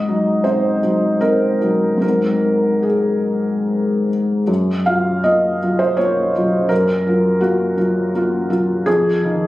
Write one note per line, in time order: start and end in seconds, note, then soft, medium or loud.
0.00 1.96 G#2 soft
0.00 0.44 D#5 medium
0.08 0.42 F#3 soft
0.08 0.42 D#4 soft
0.44 0.80 C4 soft
0.44 0.80 D#4 soft
0.44 1.22 C5 medium
0.83 1.18 F#3 soft
0.83 1.19 D#4 soft
1.21 1.58 C4 soft
1.21 1.58 D#4 soft
1.21 2.00 A#4 medium
1.62 1.97 F#3 soft
1.62 1.99 D#4 soft
1.98 4.42 G#2 soft
1.98 4.43 F#3 soft
1.98 4.43 C4 soft
1.98 4.44 D#4 soft
2.02 2.85 A#4 medium
2.83 4.07 G#4 soft
4.48 6.66 F#2 soft
4.86 5.21 F#3 soft
4.86 5.21 F4 soft
4.86 5.24 F5 medium
5.24 5.58 A#3 soft
5.24 5.58 F4 soft
5.24 5.80 D#5 medium
5.62 5.95 F#3 soft
5.62 5.96 F4 soft
5.79 5.98 C5 medium
5.97 6.31 A#3 soft
5.97 6.31 F4 soft
5.97 6.69 C#5 medium
6.36 6.67 F#3 soft
6.36 6.67 F4 soft
6.69 8.83 F#2 soft
6.69 7.41 A#4 medium
7.07 7.39 F#3 soft
7.07 7.39 F4 soft
7.41 7.75 A#3 soft
7.41 7.75 F4 soft
7.41 8.50 F#4 medium
7.77 8.10 F#3 soft
7.77 8.10 F4 soft
8.15 8.47 A#3 soft
8.15 8.48 F4 soft
8.50 8.83 F#3 soft
8.50 8.83 F4 soft
8.86 9.47 F2 soft
8.86 9.47 G#4 medium
9.23 9.47 D#3 soft
9.23 9.47 F4 soft